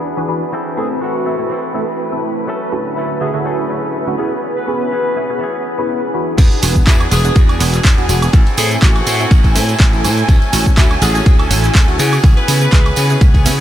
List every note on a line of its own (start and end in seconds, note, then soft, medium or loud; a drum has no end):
0.00 0.14 E3 medium
0.00 0.52 B3 medium
0.00 0.14 D4 medium
0.00 0.53 D4 medium
0.00 0.14 F#4 medium
0.00 0.14 G#4 medium
0.00 0.54 G#4 medium
0.00 0.14 B4 medium
0.00 6.40 B4 medium
0.17 0.25 E3 medium
0.17 0.25 D4 medium
0.17 0.25 F#4 medium
0.17 0.25 G#4 medium
0.17 0.25 B4 loud
0.28 0.43 E3 medium
0.28 0.43 D4 medium
0.28 0.43 F#4 medium
0.28 0.43 G#4 medium
0.28 0.43 B4 loud
0.53 1.00 E3 medium
0.53 1.01 C4 medium
0.53 1.02 E4 medium
0.53 1.03 A4 medium
0.77 1.23 A3 medium
0.77 1.23 C4 medium
0.77 1.23 E4 medium
0.77 0.90 G#4 medium
0.77 1.23 A4 medium
1.01 1.26 E3 medium
1.01 1.26 C4 medium
1.01 1.26 E4 medium
1.01 1.70 F#4 medium
1.01 1.24 A4 medium
1.26 1.35 A3 medium
1.26 1.35 C4 medium
1.26 1.50 C4 soft
1.26 1.35 E4 medium
1.26 1.51 E4 soft
1.26 1.50 A4 medium
1.26 1.36 A4 medium
1.38 1.52 A3 medium
1.38 1.52 C4 medium
1.38 1.52 E4 medium
1.38 1.52 A4 medium
1.49 2.47 E3 medium
1.49 2.48 C4 medium
1.49 2.48 E4 medium
1.54 2.48 A4 medium
1.74 1.84 A3 medium
1.74 1.84 C4 medium
1.74 1.84 E4 medium
1.74 1.84 A4 medium
2.12 2.46 A3 medium
2.12 2.46 C4 medium
2.12 2.47 E4 medium
2.12 2.47 A4 medium
2.47 2.95 F#3 medium
2.47 2.96 A3 medium
2.47 2.98 C#4 medium
2.47 2.98 A4 loud
2.72 3.18 D3 medium
2.72 3.18 A3 medium
2.72 3.18 C#4 medium
2.72 3.19 E4 medium
2.72 3.19 F#4 loud
2.96 3.21 F#3 medium
2.96 3.21 A3 medium
2.96 3.21 C#4 medium
2.96 3.09 E4 medium
2.96 3.19 A4 medium
3.20 3.31 D3 medium
3.20 3.31 A3 medium
3.20 3.44 A3 soft
3.20 3.31 C#4 medium
3.20 3.45 C#4 soft
3.20 3.31 E4 medium
3.20 3.31 F#4 medium
3.20 3.59 G#4 medium
3.20 3.45 A4 medium
3.33 3.67 D3 medium
3.33 3.67 A3 medium
3.33 3.67 C#4 medium
3.33 3.67 E4 medium
3.33 3.67 F#4 loud
3.45 4.18 F#3 medium
3.45 4.19 A3 medium
3.45 4.18 C#4 medium
3.45 4.18 A4 medium
3.69 4.04 D3 medium
3.69 4.04 A3 medium
3.69 4.04 C#4 medium
3.69 4.04 E4 medium
3.69 4.04 F#4 medium
4.07 4.15 D3 medium
4.07 4.15 A3 medium
4.07 4.15 C#4 medium
4.07 4.15 E4 medium
4.07 4.16 F#4 loud
4.18 4.90 E3 medium
4.18 4.33 B3 medium
4.18 4.92 B3 medium
4.18 4.33 C#4 medium
4.18 4.92 C#4 medium
4.18 4.34 E4 medium
4.18 4.93 G#4 medium
4.18 4.34 G#4 loud
4.57 4.78 B4 medium
4.67 5.13 B3 medium
4.67 5.14 C#4 medium
4.67 5.14 E4 medium
4.67 5.14 G#4 medium
4.81 5.49 B4 medium
4.91 5.16 E3 medium
4.91 5.16 B3 medium
4.91 5.16 C#4 medium
4.91 5.14 G#4 medium
5.15 5.26 B3 medium
5.15 5.40 B3 soft
5.15 5.26 C#4 medium
5.15 5.41 C#4 soft
5.15 5.26 E4 medium
5.15 5.40 G#4 medium
5.15 5.26 G#4 medium
5.29 5.42 B3 medium
5.29 5.43 C#4 medium
5.29 5.43 E4 medium
5.29 5.43 G#4 medium
5.39 6.42 E3 medium
5.39 6.36 B3 medium
5.39 6.38 C#4 medium
5.44 6.38 G#4 medium
5.78 6.11 B3 medium
5.78 6.11 C#4 medium
5.78 6.11 E4 medium
5.78 6.11 G#4 loud
6.14 6.60 E3 medium
6.14 6.60 D4 medium
6.14 6.60 F#4 medium
6.14 6.60 G#4 medium
6.14 6.60 B4 medium
6.38 6.48 E2 loud
6.38 6.61 B3 medium
6.38 6.62 D4 loud
6.38 6.63 G#4 loud
6.38 13.60 G#5 medium
6.38 kick loud
6.38 closed hi-hat medium
6.38 tambourine soft
6.38 crash loud
6.38 cabasa soft
6.51 muted slap bass stroke soft
6.51 closed hi-hat soft
6.51 tambourine soft
6.62 6.81 E1 medium
6.62 6.85 B3 medium
6.62 7.09 B3 medium
6.62 7.09 D4 medium
6.62 6.86 D4 medium
6.62 7.09 F#4 medium
6.62 7.09 G#4 loud
6.62 6.87 G#4 medium
6.62 open hi-hat loud
6.62 tambourine medium
6.62 cabasa medium
6.76 kick medium
6.76 cabasa soft
6.86 7.05 E2 medium
6.86 7.09 B3 medium
6.86 7.11 D4 loud
6.86 7.00 E4 medium
6.86 7.12 G#4 loud
6.86 kick loud
6.86 clap loud
6.86 closed hi-hat medium
6.86 tambourine medium
6.86 cabasa soft
7.00 closed hi-hat soft
7.00 tambourine soft
7.00 high woodblock medium
7.10 7.30 E1 medium
7.10 7.24 B3 medium
7.10 7.21 B3 medium
7.10 7.21 D4 medium
7.10 7.25 D4 medium
7.10 7.22 F#4 medium
7.10 7.49 G#4 medium
7.10 7.22 G#4 medium
7.10 7.23 G#4 medium
7.10 open hi-hat medium
7.10 tambourine medium
7.10 cabasa medium
7.24 7.57 B3 loud
7.24 7.57 D4 medium
7.24 7.50 D4 medium
7.24 7.58 F#4 medium
7.24 7.47 G#4 medium
7.24 7.58 G#4 loud
7.24 closed hi-hat soft
7.24 tambourine soft
7.24 cabasa soft
7.35 7.62 E2 medium
7.35 kick loud
7.35 closed hi-hat medium
7.35 tambourine medium
7.35 cabasa soft
7.48 7.60 D4 medium
7.48 7.60 G#4 medium
7.48 closed hi-hat soft
7.48 tambourine soft
7.48 high woodblock medium
7.59 7.78 E1 loud
7.59 7.73 B3 medium
7.59 7.94 B3 medium
7.59 7.95 D4 medium
7.59 7.74 D4 medium
7.59 7.95 F#4 medium
7.59 7.95 G#4 medium
7.59 7.71 G#4 medium
7.59 open hi-hat loud
7.59 tambourine loud
7.59 cabasa medium
7.73 7.84 D4 medium
7.73 7.84 G#4 medium
7.73 clap soft
7.73 closed hi-hat soft
7.73 tambourine soft
7.73 cabasa soft
7.84 8.10 E2 medium
7.84 8.07 B3 medium
7.84 8.09 D4 medium
7.84 8.10 G#4 loud
7.84 kick loud
7.84 clap loud
7.84 closed hi-hat medium
7.84 tambourine medium
7.84 cabasa soft
7.97 8.06 B3 loud
7.97 8.06 D4 medium
7.97 8.06 F#4 medium
7.97 8.06 G#4 loud
7.97 closed hi-hat soft
7.97 tambourine soft
8.08 8.27 E1 medium
8.08 8.33 B3 medium
8.08 8.24 B3 medium
8.08 8.24 D4 medium
8.08 8.34 D4 medium
8.08 8.24 F#4 medium
8.08 8.24 G#4 loud
8.08 8.34 G#4 medium
8.08 open hi-hat medium
8.08 tambourine loud
8.08 cabasa medium
8.22 closed hi-hat soft
8.22 tambourine soft
8.22 cabasa soft
8.22 high woodblock medium
8.33 8.43 A1 medium
8.33 8.56 E3 medium
8.33 8.57 C4 loud
8.33 8.58 E4 loud
8.33 8.59 A4 loud
8.33 kick loud
8.33 closed hi-hat medium
8.33 tambourine medium
8.33 cabasa soft
8.46 closed hi-hat soft
8.46 tambourine soft
8.57 8.76 A2 medium
8.57 8.81 E3 medium
8.57 9.04 A3 medium
8.57 9.04 C4 medium
8.57 8.81 C4 medium
8.57 9.04 E4 medium
8.57 8.82 E4 medium
8.57 8.70 G#4 medium
8.57 9.04 A4 medium
8.57 8.83 A4 medium
8.57 open hi-hat loud
8.57 tambourine loud
8.57 cabasa medium
8.71 tambourine soft
8.71 cabasa soft
8.82 9.00 A1 medium
8.82 9.05 E3 medium
8.82 9.06 C4 loud
8.82 9.07 E4 loud
8.82 9.51 F#4 loud
8.82 9.07 A4 loud
8.82 kick loud
8.82 clap loud
8.82 closed hi-hat medium
8.82 tambourine medium
8.82 cabasa soft
8.96 closed hi-hat soft
8.96 tambourine soft
8.96 high woodblock medium
9.06 9.25 A2 medium
9.06 9.20 E3 medium
9.06 9.16 A3 medium
9.06 9.16 C4 medium
9.06 9.20 C4 medium
9.06 9.16 E4 medium
9.06 9.19 E4 medium
9.06 9.16 A4 medium
9.06 9.18 A4 medium
9.06 open hi-hat medium
9.06 tambourine loud
9.06 cabasa medium
9.19 9.33 A3 medium
9.19 9.33 C4 medium
9.19 9.45 C4 medium
9.19 9.33 E4 medium
9.19 9.44 E4 medium
9.19 9.42 A4 medium
9.19 9.33 A4 loud
9.19 closed hi-hat soft
9.19 tambourine soft
9.19 cabasa soft
9.31 9.57 A1 medium
9.31 kick loud
9.31 closed hi-hat medium
9.31 tambourine medium
9.31 cabasa soft
9.43 9.54 C4 soft
9.43 9.55 E4 medium
9.43 9.55 A4 medium
9.43 kick medium
9.43 closed hi-hat soft
9.43 tambourine soft
9.55 9.73 A2 loud
9.55 9.68 E3 medium
9.55 9.65 A3 medium
9.55 9.65 C4 medium
9.55 9.69 C4 medium
9.55 9.65 E4 medium
9.55 9.68 E4 medium
9.55 9.65 A4 medium
9.55 9.66 A4 medium
9.55 open hi-hat loud
9.55 tambourine loud
9.55 cabasa medium
9.68 9.79 C4 medium
9.68 9.79 E4 medium
9.68 9.79 A4 medium
9.68 closed hi-hat soft
9.68 tambourine soft
9.68 cabasa soft
9.79 10.06 A1 medium
9.79 10.02 E3 medium
9.79 10.03 C4 loud
9.79 10.04 E4 loud
9.79 kick loud
9.79 clap loud
9.79 closed hi-hat medium
9.79 cabasa soft
9.92 10.27 A3 medium
9.92 10.27 C4 medium
9.92 10.27 E4 medium
9.92 10.27 A4 medium
9.92 closed hi-hat soft
9.92 tambourine soft
10.03 10.22 A2 medium
10.03 10.17 E3 medium
10.03 10.17 C4 medium
10.03 10.17 E4 medium
10.03 10.15 A4 medium
10.03 open hi-hat medium
10.03 tambourine loud
10.03 cabasa medium
10.03 high woodblock medium
10.17 10.28 C4 medium
10.17 10.29 E4 medium
10.17 10.28 A4 medium
10.17 closed hi-hat soft
10.17 tambourine soft
10.17 cabasa soft
10.28 10.38 D2 loud
10.28 10.51 F#3 medium
10.28 10.52 A3 loud
10.28 10.53 C#4 loud
10.28 10.54 A4 loud
10.28 kick loud
10.28 closed hi-hat medium
10.28 tambourine medium
10.28 cabasa soft
10.42 closed hi-hat soft
10.42 tambourine soft
10.52 10.71 A1 medium
10.52 10.76 F#3 medium
10.52 10.99 A3 medium
10.52 10.77 A3 medium
10.52 10.99 C#4 medium
10.52 10.77 C#4 medium
10.52 10.99 E4 medium
10.52 10.99 F#4 loud
10.52 10.78 A4 medium
10.52 open hi-hat loud
10.52 tambourine loud
10.52 cabasa medium
10.66 kick medium
10.66 cabasa soft
10.77 10.95 D2 medium
10.77 11.00 F#3 medium
10.77 11.01 A3 loud
10.77 11.02 C#4 loud
10.77 10.90 E4 medium
10.77 11.02 A4 loud
10.77 kick loud
10.77 clap loud
10.77 closed hi-hat medium
10.77 tambourine medium
10.77 cabasa soft
10.91 closed hi-hat soft
10.91 tambourine soft
10.91 high woodblock medium
11.01 11.20 A1 medium
11.01 11.15 F#3 medium
11.01 11.11 A3 medium
11.01 11.15 A3 medium
11.01 11.12 C#4 medium
11.01 11.15 C#4 medium
11.01 11.12 E4 medium
11.01 11.12 F#4 loud
11.01 11.39 G#4 medium
11.01 11.13 A4 medium
11.01 open hi-hat loud
11.01 tambourine loud
11.01 cabasa medium
11.14 11.47 A3 loud
11.14 11.40 A3 medium
11.14 11.48 C#4 medium
11.14 11.39 C#4 medium
11.14 11.48 E4 medium
11.14 11.48 F#4 loud
11.14 11.37 A4 medium
11.14 closed hi-hat soft
11.14 tambourine soft
11.14 cabasa soft
11.26 kick loud
11.26 closed hi-hat medium
11.26 tambourine medium
11.26 cabasa soft
11.39 11.50 A3 medium
11.39 11.51 C#4 medium
11.39 11.50 A4 medium
11.39 closed hi-hat soft
11.39 tambourine soft
11.39 high woodblock medium
11.50 11.69 A1 loud
11.50 11.63 F#3 medium
11.50 11.85 A3 medium
11.50 11.64 A3 medium
11.50 11.85 C#4 medium
11.50 11.63 C#4 medium
11.50 11.85 E4 medium
11.50 11.85 F#4 medium
11.50 11.62 A4 medium
11.50 open hi-hat loud
11.50 tambourine loud
11.50 cabasa medium
11.63 11.74 A3 medium
11.63 11.74 C#4 medium
11.63 11.74 A4 medium
11.63 clap soft
11.63 closed hi-hat soft
11.63 tambourine soft
11.63 cabasa soft
11.74 11.99 D2 medium
11.74 11.98 F#3 medium
11.74 11.99 A3 medium
11.74 11.99 C#4 loud
11.74 12.00 A4 loud
11.74 kick loud
11.74 clap loud
11.74 closed hi-hat medium
11.74 tambourine medium
11.74 cabasa soft
11.88 11.96 A3 loud
11.88 11.96 C#4 medium
11.88 11.96 E4 medium
11.88 11.96 F#4 loud
11.88 closed hi-hat soft
11.88 tambourine soft
11.98 12.17 C#3 medium
11.98 12.12 E3 medium
11.98 12.14 B3 medium
11.98 12.13 B3 medium
11.98 12.14 C#4 medium
11.98 12.12 C#4 medium
11.98 12.14 E4 medium
11.98 12.14 G#4 loud
11.98 12.10 G#4 medium
11.98 open hi-hat loud
11.98 tambourine loud
11.98 cabasa medium
12.12 12.23 B3 medium
12.12 12.23 C#4 medium
12.12 12.23 G#4 medium
12.12 closed hi-hat soft
12.12 tambourine soft
12.12 cabasa soft
12.12 high woodblock medium
12.23 12.33 C#2 loud
12.23 12.46 E3 loud
12.23 12.47 B3 loud
12.23 12.48 C#4 loud
12.23 12.49 G#4 loud
12.23 kick loud
12.23 closed hi-hat medium
12.23 tambourine medium
12.23 cabasa soft
12.37 12.59 B4 medium
12.37 muted slap bass stroke soft
12.37 closed hi-hat soft
12.37 tambourine soft
12.47 12.66 C#3 medium
12.47 12.71 E3 medium
12.47 12.94 B3 medium
12.47 12.72 B3 medium
12.47 12.94 C#4 medium
12.47 12.72 C#4 medium
12.47 12.94 E4 medium
12.47 12.94 G#4 medium
12.47 12.73 G#4 medium
12.47 open hi-hat loud
12.47 tambourine loud
12.47 cabasa medium
12.61 13.29 B4 loud
12.61 closed hi-hat soft
12.61 tambourine soft
12.61 cabasa soft
12.72 12.91 C#2 medium
12.72 12.95 E3 loud
12.72 12.96 B3 loud
12.72 12.97 C#4 loud
12.72 12.98 G#4 loud
12.72 kick loud
12.72 clap loud
12.72 closed hi-hat medium
12.72 tambourine medium
12.72 cabasa soft
12.85 closed hi-hat soft
12.85 tambourine soft
12.85 high woodblock medium
12.96 13.15 C#3 medium
12.96 13.10 E3 medium
12.96 13.06 B3 medium
12.96 13.10 B3 medium
12.96 13.06 C#4 medium
12.96 13.10 C#4 medium
12.96 13.06 E4 medium
12.96 13.06 G#4 medium
12.96 13.08 G#4 medium
12.96 open hi-hat loud
12.96 tambourine medium
12.96 cabasa medium
13.09 13.23 B3 medium
13.09 13.36 B3 soft
13.09 13.23 C#4 medium
13.09 13.34 C#4 medium
13.09 13.23 E4 medium
13.09 13.33 G#4 medium
13.09 13.23 G#4 medium
13.09 closed hi-hat soft
13.09 tambourine soft
13.09 cabasa soft
13.21 13.47 C#2 medium
13.21 kick loud
13.21 closed hi-hat medium
13.21 tambourine medium
13.21 cabasa soft
13.34 13.45 B3 medium
13.34 13.46 C#4 medium
13.34 13.45 G#4 medium
13.34 kick medium
13.34 closed hi-hat soft
13.34 tambourine soft
13.45 13.60 C#3 loud
13.45 13.59 E3 medium
13.45 13.55 B3 medium
13.45 13.59 B3 medium
13.45 13.55 C#4 medium
13.45 13.59 C#4 medium
13.45 13.55 E4 medium
13.45 13.55 G#4 loud
13.45 13.57 G#4 medium
13.45 open hi-hat loud
13.45 tambourine loud
13.45 cabasa medium